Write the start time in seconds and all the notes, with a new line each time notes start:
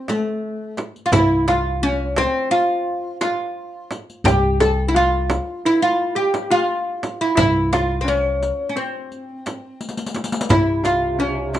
Already playing: C4
0.08 A3, riq, darbuka tek, frame drum
0.77 riq, darbuka tek, frame drum
0.96 riq, darbuka ka
1.06 F4
1.12 C2 E4, riq, frame drum, darbuka dum
1.48 F4, riq, darbuka tek, frame drum
1.83 C#4
2.16 C4, riq, darbuka tek, frame drum
2.51 F4, riq, darbuka ka
2.88 darbuka ka
3.21 F4, riq, darbuka tek, frame drum
3.91 riq, darbuka tek, frame drum
4.09 riq, darbuka ka
4.24 C2 G4, riq, darbuka dum, frame drum
4.60 A4, riq, darbuka tek, frame drum
4.88 E4
4.95 F4
5.30 riq, darbuka tek, frame drum
5.64 E4, riq, darbuka ka
5.82 F4
5.99 darbuka ka
6.15 G4
6.34 riq, darbuka tek, frame drum
6.42 G4
6.51 F4
7.03 riq, darbuka tek, frame drum
7.21 E4, riq, darbuka ka
7.35 C2 E4, riq, frame drum, darbuka dum
7.73 F4, riq, darbuka tek, frame drum
8.01 C4 C#4
8.08 C#4
8.43 riq, darbuka tek
8.69 C#4
8.76 C4, riq
9.11 riq, darbuka ka
9.46 riq, darbuka tek, frame drum
9.81 riq, darbuka tek
9.89 riq, darbuka ka
9.97 riq, darbuka tek
10.06 riq, darbuka ka
10.14 riq, darbuka tek, frame drum
10.24 riq, darbuka ka
10.32 riq, darbuka tek
10.41 riq, darbuka ka
10.49 C2 C3 E4, riq, darbuka dum, frame drum
10.84 F4, riq, darbuka tek, frame drum
11.19 C#4
11.54 riq, darbuka tek, frame drum